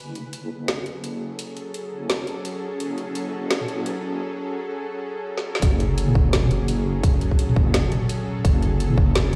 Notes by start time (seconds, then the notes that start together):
Already playing: F#1 F#3 C#4 G#4 A4
0.15 closed hi-hat
0.33 closed hi-hat
0.50 F#1
0.68 snare, closed hi-hat
0.86 F#1, closed hi-hat
1.04 closed hi-hat
1.39 closed hi-hat
1.57 closed hi-hat
1.74 closed hi-hat
1.92 F#1
2.10 snare, closed hi-hat
2.27 closed hi-hat
2.45 closed hi-hat
2.80 F#1, closed hi-hat
2.98 closed hi-hat
3.15 closed hi-hat
3.33 F#1
3.51 snare, closed hi-hat
3.61 mid tom
3.68 F#1, closed hi-hat
3.86 closed hi-hat
5.37 snare
5.55 snare
5.62 F#1 F#3 C#4 G#4 A4, kick, closed hi-hat
5.80 closed hi-hat
5.98 closed hi-hat
6.08 mid tom
6.15 F#1, kick
6.33 snare, closed hi-hat
6.43 mid tom
6.51 F#1, closed hi-hat
6.68 closed hi-hat
7.03 kick, closed hi-hat
7.21 closed hi-hat
7.31 kick
7.39 closed hi-hat
7.49 mid tom
7.56 F#1, kick
7.74 snare, closed hi-hat
7.92 closed hi-hat, mid tom
8.02 mid tom
8.09 closed hi-hat
8.27 mid tom
8.33 mid tom
8.39 mid tom
8.45 F#1, kick, closed hi-hat
8.62 closed hi-hat
8.80 closed hi-hat
8.90 mid tom
8.98 F#1, kick
9.15 snare, closed hi-hat